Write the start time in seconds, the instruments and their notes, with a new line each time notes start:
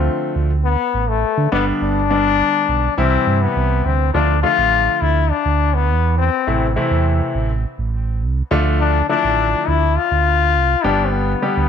Already playing: grand piano D3 F3 A3 F4, trombone C4
0.35 sub bass D2
0.64 trombone B3
0.94 sub bass A1
1.08 trombone A3
1.37 sub bass D3
1.52 sub bass G1, grand piano D3 G3 B3 D4, trombone B3
1.81 sub bass G1, trombone D4
2.10 grand piano D3 G3 B3 D4
2.68 sub bass B1
2.97 sub bass C2, grand piano C3 E3 G3 E4, trombone C4
3.27 sub bass G2
3.42 trombone B3
3.56 sub bass C2
3.85 sub bass D2, trombone C4
4.14 sub bass D2, grand piano D3 F3 A3 D4 F4, trombone D4
4.43 grand piano D3 F3 A3 D4 F4, trombone F4
4.58 sub bass A1
5.01 sub bass D2, trombone E4
5.31 trombone D4
5.45 sub bass D2
5.74 trombone B3
5.89 sub bass E2
6.18 trombone C4
6.47 sub bass A1, grand piano C3 E3 A3 C4 E4
6.76 grand piano C3 E3 A3 C4 E4
6.91 sub bass E2
7.35 sub bass A1
7.78 sub bass A1
8.22 sub bass C2
8.51 sub bass D2, grand piano D3 F3 A3 D4 F4
8.80 trombone D4
9.09 grand piano D3 F3 A3 D4 E4, trombone D4
9.24 sub bass A1
9.68 sub bass D2, trombone E4
9.97 trombone F4
10.11 sub bass D2
10.55 sub bass C2
10.84 sub bass G1, grand piano D3 G3 B3 D4 G4, trombone D4
11.06 trombone C4
11.13 trombone B3
11.42 grand piano D3 G3 B3 D4 G4
11.57 sub bass D2